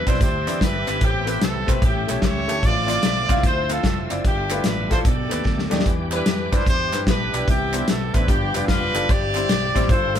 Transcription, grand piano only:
0.06 0.17 C4 medium
0.06 0.17 E4 medium
0.06 0.18 B4 medium
0.06 0.18 D5 medium
0.46 0.57 C4 medium
0.46 0.58 E4 medium
0.46 0.58 B4 medium
0.46 0.58 D5 medium
0.86 0.97 C4 medium
0.86 0.98 E4 medium
0.86 0.98 B4 medium
0.86 0.98 E5 medium
1.02 1.64 A2 medium
1.26 1.37 A3 medium
1.26 1.37 C4 medium
1.26 1.38 G4 medium
1.26 1.38 B4 medium
1.67 1.78 A3 medium
1.67 1.78 C4 medium
1.67 1.78 G4 medium
1.67 1.79 C5 medium
1.82 2.45 A2 medium
2.07 2.18 A3 medium
2.07 2.19 E4 medium
2.07 2.19 G4 medium
2.07 2.19 C#5 medium
2.48 2.59 A3 medium
2.48 2.59 E4 medium
2.48 2.59 G4 medium
2.48 2.60 A4 medium
2.62 3.25 A2 medium
2.87 2.99 C4 medium
2.87 2.99 E4 medium
2.87 2.99 F4 medium
2.87 2.99 D5 medium
3.28 3.39 C4 medium
3.28 3.40 E4 medium
3.28 3.40 F4 medium
3.28 3.40 F5 loud
3.69 3.80 C4 medium
3.69 3.80 E4 medium
3.69 3.80 F4 medium
3.69 3.81 F5 medium
4.09 4.20 C4 medium
4.09 4.20 E4 medium
4.09 4.21 F4 medium
4.09 4.21 D5 medium
4.25 4.87 G2 medium
4.50 4.61 A3 medium
4.50 4.61 E4 medium
4.50 4.62 F4 medium
4.50 4.62 B4 medium
4.90 5.01 A3 medium
4.90 5.01 E4 medium
4.90 5.01 F4 medium
4.90 5.02 A4 medium
5.06 5.68 B2 medium
5.30 5.41 A3 medium
5.30 5.41 D#4 medium
5.30 5.41 G4 medium
5.30 5.42 B4 medium
5.70 5.81 A3 medium
5.70 5.81 D#4 medium
5.70 5.82 G4 medium
5.70 5.82 D5 medium
5.86 6.48 E3 medium
6.11 6.22 G3 medium
6.11 6.23 D4 medium
6.11 6.23 E4 medium
6.11 6.23 B4 medium
6.52 6.63 G3 medium
6.52 6.63 D4 medium
6.52 6.63 E4 medium
6.52 6.63 B4 medium
6.92 7.03 G3 medium
6.92 7.03 D4 medium
6.92 7.04 E4 medium
6.92 7.04 B4 medium
7.33 7.44 G3 medium
7.33 7.44 D4 medium
7.33 7.44 E4 medium
7.33 7.45 G4 medium
7.48 8.10 C3 medium
7.73 7.84 B3 medium
7.73 7.84 D4 medium
7.73 7.84 E4 medium
7.73 7.84 C5 medium
8.14 8.24 B3 medium
8.14 8.24 D4 medium
8.14 8.25 E4 medium
8.14 8.25 C5 medium
8.28 8.91 G2 medium
8.54 8.65 G3 medium
8.54 8.65 D4 medium
8.54 8.66 F4 medium
8.54 8.66 B4 medium
8.94 9.05 G3 medium
8.94 9.05 D4 medium
8.94 9.05 F4 medium
8.94 9.06 A4 medium
9.09 9.72 G2 medium
9.35 9.46 G3 medium
9.35 9.46 C4 medium
9.35 9.46 E4 medium
9.35 9.47 C5 medium
9.75 9.86 G3 loud
9.75 9.86 C4 medium
9.75 9.86 E4 medium
9.75 9.87 C5 medium
9.88 10.20 G2 medium
10.14 10.20 A3 medium
10.14 10.20 F4 medium
10.14 10.20 G4 medium
10.14 10.20 C5 medium

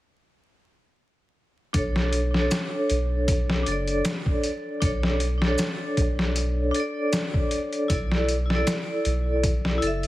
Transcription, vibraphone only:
1.73 2.28 D4 medium
1.73 2.29 A4 medium
1.77 2.30 C#5 medium
2.31 3.61 D4 medium
2.35 3.63 A4 medium
2.40 3.65 C#5 medium
3.63 4.76 D4 medium
3.68 4.79 A4 medium
3.72 4.81 D5 medium
4.81 5.36 D4 medium
4.81 5.37 A4 medium
4.85 5.38 C#5 medium
5.38 6.68 D4 medium
5.42 6.70 A4 medium
5.47 6.73 C#5 medium
6.71 7.84 D4 medium
6.76 7.86 A4 medium
6.80 7.88 D5 medium
7.88 8.44 E4 medium
7.88 8.45 A4 medium
7.93 8.46 D5 medium
8.46 9.76 E4 medium
8.50 9.78 A4 medium
8.55 9.81 D5 medium
9.78 10.07 E4 medium
9.82 10.07 A4 medium
9.87 10.07 E5 medium

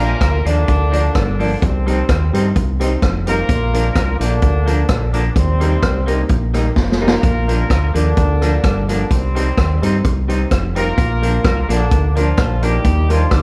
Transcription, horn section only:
0.00 0.42 A#3 loud
0.00 0.43 F4 medium
0.00 0.42 A#4 loud
0.48 1.36 D3 medium
0.48 1.37 A#3 medium
0.48 1.36 D4 medium
1.42 1.61 D3 medium
1.42 1.61 A#3 medium
1.42 1.61 D4 medium
1.64 2.57 G3 medium
1.64 2.57 C4 medium
3.28 4.17 A#3 loud
3.28 4.17 F4 medium
3.28 4.17 A#4 loud
4.19 5.10 D3 medium
4.19 5.11 A#3 medium
4.19 5.10 D4 medium
5.13 5.20 D3 medium
5.13 5.22 A#3 medium
5.13 5.20 D4 medium
5.29 5.36 D3 medium
5.29 5.36 D4 medium
5.35 6.29 C3 medium
5.35 6.30 G3 medium
5.35 6.29 C4 medium
7.02 7.91 A#3 medium
7.02 7.92 F4 medium
7.02 7.91 A#4 loud
7.96 8.85 D3 medium
7.96 8.85 A#3 medium
7.96 8.85 D4 medium
8.90 9.10 D3 medium
8.90 9.10 A#3 medium
8.90 9.10 D4 medium
9.13 10.01 G3 medium
9.13 10.01 C4 medium
10.77 11.66 A#3 loud
10.77 11.66 F4 medium
10.77 11.66 A#4 loud
11.70 12.13 D3 medium
11.70 12.13 A#3 medium
11.70 12.13 D4 medium
12.16 12.63 F3 medium
12.16 12.63 D4 medium
12.16 12.63 F4 medium
12.63 13.10 G3 medium
12.63 13.10 D#4 medium
12.63 13.10 G4 medium
13.10 13.32 F3 medium
13.10 13.32 D4 medium
13.10 13.32 F4 medium
13.33 13.42 G3 medium
13.33 13.42 D#4 medium
13.33 13.42 G4 medium

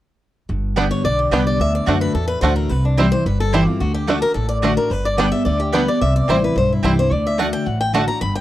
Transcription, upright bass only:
0.49 0.89 G1 medium
1.04 1.28 B1 medium
1.31 1.55 C2 medium
1.59 1.80 D2 medium
1.87 2.11 F#2 medium
2.14 2.38 E2 medium
2.42 2.66 D2 medium
2.70 3.10 C2 medium
3.26 3.65 G1 medium
3.81 4.21 D2 medium
4.35 4.75 A1 medium
4.90 5.31 G1 medium
5.46 5.86 D2 medium
6.02 6.21 C2 medium
6.28 6.52 A1 medium
6.56 6.80 B1 medium
6.83 7.07 C2 medium
7.11 7.51 D2 medium
7.67 8.06 A1 medium
8.21 8.41 G1 medium

